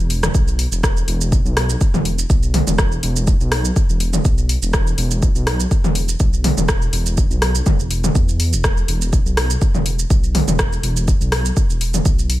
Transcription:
0.00 E1
0.10 open hi-hat
0.23 cross-stick, mid tom, shaker
0.34 B1, kick, shaker
0.48 shaker
0.59 open hi-hat
0.72 E1, shaker
0.83 kick, cross-stick, shaker
0.97 shaker
1.08 E1, open hi-hat
1.21 shaker
1.32 kick, shaker
1.45 B1, shaker
1.57 cross-stick, open hi-hat
1.70 shaker
1.81 kick, shaker
1.94 E1, mid tom, shaker
2.05 open hi-hat
2.19 shaker
2.30 B1, kick, shaker
2.43 shaker
2.54 open hi-hat, mid tom
2.67 E1, mid tom, shaker
2.78 kick, cross-stick, shaker
2.92 shaker
3.03 E1, open hi-hat
3.16 shaker
3.27 kick, shaker
3.41 B1, shaker
3.52 cross-stick, open hi-hat
3.65 shaker
3.76 kick, shaker
3.89 E1, shaker
4.00 open hi-hat
4.13 mid tom, shaker
4.25 B1, kick, shaker
4.38 shaker
4.49 open hi-hat
4.62 E1, shaker
4.73 kick, cross-stick, shaker
4.87 shaker
4.98 E1, open hi-hat
5.11 shaker
5.22 kick, shaker
5.35 B1, shaker
5.47 cross-stick, open hi-hat
5.60 shaker
5.71 kick, shaker
5.84 E1, mid tom, shaker
5.95 open hi-hat
6.09 shaker
6.20 B1, kick, shaker
6.33 shaker
6.44 open hi-hat, mid tom
6.58 E1, mid tom, shaker
6.69 kick, cross-stick, shaker
6.82 shaker
6.93 E1, open hi-hat
7.06 shaker
7.17 kick, shaker
7.31 B1, shaker
7.42 cross-stick, open hi-hat
7.55 shaker
7.66 kick, mid tom, shaker
7.79 E1, shaker
7.91 open hi-hat
8.04 mid tom, shaker
8.15 E2, kick, shaker
8.28 shaker
8.40 open hi-hat
8.53 E1, shaker
8.64 kick, cross-stick, shaker
8.77 shaker
8.88 E1, open hi-hat
9.02 shaker
9.13 kick, shaker
9.26 B1, shaker
9.37 cross-stick, open hi-hat
9.50 shaker
9.62 kick, shaker
9.75 E1, mid tom, shaker
9.86 open hi-hat
9.99 shaker
10.10 B1, kick, shaker
10.24 shaker
10.35 open hi-hat, mid tom
10.48 E1, mid tom, shaker
10.59 kick, cross-stick, shaker
10.73 shaker
10.83 E1, open hi-hat
10.97 shaker
11.08 kick, shaker
11.21 B1, shaker
11.32 cross-stick, open hi-hat
11.45 shaker
11.57 kick, shaker
11.70 E1, shaker
11.81 open hi-hat
11.94 mid tom, shaker
12.05 B1, kick, shaker
12.19 shaker
12.30 open hi-hat

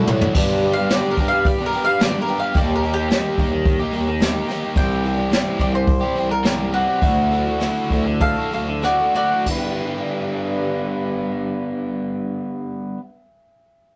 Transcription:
Already playing: E4 F#4 A4 D5 E5
0.07 A2 D3 F#3 A3 D4 F#4 F#5, mid tom
0.11 E4
0.20 A3 D4 F#4, floor tom
0.35 G2 D3 G3 B3 D4, kick, crash
0.39 G4
0.62 G3 B3 D4 G4, open hi-hat
0.73 G4 F5
0.78 G3 B3 D4
0.89 G2 D3 G3 B3 D4 D5, snare, open hi-hat
0.94 G4
1.11 A#4
1.17 G2 G3 B3 D4 G4, kick, open hi-hat
1.28 F5
1.33 muted overdriven electric guitar stroke
1.45 D5, kick, open hi-hat
1.58 G3 B3 D4 G4
1.66 A#4
1.72 G2 G3 B3 D4 G4, open hi-hat
1.84 F5, muted overdriven electric guitar stroke
2.00 G2 D3 G3 B3 D4 G4 D5, snare, open hi-hat
2.12 G3 B3 D4 G4
2.21 A#4
2.27 G3 B3 D4 G4, open hi-hat
2.40 B3 D4 G4 F5
2.54 D#2 D#3 G3 A#3 D#4 G4 D5, kick, open hi-hat
2.75 A#4
2.82 D#3 A#3 D#4, open hi-hat
2.86 G4
2.94 G4
2.98 A#3 D#4
3.09 D#3 G3 A#3 D#4 G4, snare, open hi-hat
3.36 D#2 D#3 G3 A#3 D#4, kick, open hi-hat
3.40 G4
3.52 muted overdriven electric guitar stroke
3.65 kick, open hi-hat
3.79 A#3 D#4 G4
3.91 D#2 D#3 G3 A#3, open hi-hat
3.96 D#4 G4
4.06 A#3 D#4 G4, muted overdriven electric guitar stroke
4.20 D#3 G3 A#3, snare, open hi-hat
4.24 D#4 G4
4.34 A#3 D#4 G4
4.46 D#3 G3 A#3 G4, snare, open hi-hat
4.50 A#3 D#4 G4
4.62 A#3 D#4 G4
4.75 C2 C3 E3 G3 C4 D4 E4 G4 G5, kick, open hi-hat
5.04 E3 G3 C4 G4, open hi-hat
5.16 C4 D4 E4
5.31 C3 E3 G3 C4 D4 E4 G4, snare, open hi-hat
5.59 C2 E3 G3 C4 D4 E4 D5, kick, open hi-hat
5.63 G4
5.74 C5, muted overdriven electric guitar stroke
5.87 kick, open hi-hat
6.00 C4 D4 E4 G4
6.05 G3
6.16 C2 E3 G3 C4 D4 E4 G4, open hi-hat
6.29 C4 D4 E4 A#4, muted overdriven electric guitar stroke
6.43 C3 E3 G3 C4 D4 E4 G4, snare, open hi-hat
6.58 C4 D4 E4
6.72 E3 G3 C4 D4 E4 F#4 G4, open hi-hat
6.88 G3 C4 G4
7.01 D2 D3 F#3 A3 D4 E4 F#4, kick, open hi-hat
7.31 D3 A3 D4 F#4, open hi-hat
7.46 A3 D4 E4
7.60 D3 F#3 A3 D4 E4 F#4, cross-stick, open hi-hat
7.90 D2 D3 F#3 A3 D4 E4 F#4, kick, open hi-hat
8.06 muted overdriven electric guitar stroke
8.21 A4 F5, kick, open hi-hat
8.36 A3 D4 E4 F#4
8.51 D2 D3 F#3 A3 D4 E4 A4 F5, open hi-hat
8.55 F#4
8.68 muted overdriven electric guitar stroke
8.82 D3 F#3 A3 D4 E4 F#4 D5, cross-stick, open hi-hat
8.87 F#4
8.98 A3 D4 E4
9.12 D3 F#3 A3 E4 F#4 D5, open hi-hat
9.17 D4 F#4
9.31 A3 D4 F#4
9.42 G2 D3
9.46 G3 B3 D4, kick, ride
9.51 B4
9.55 G4

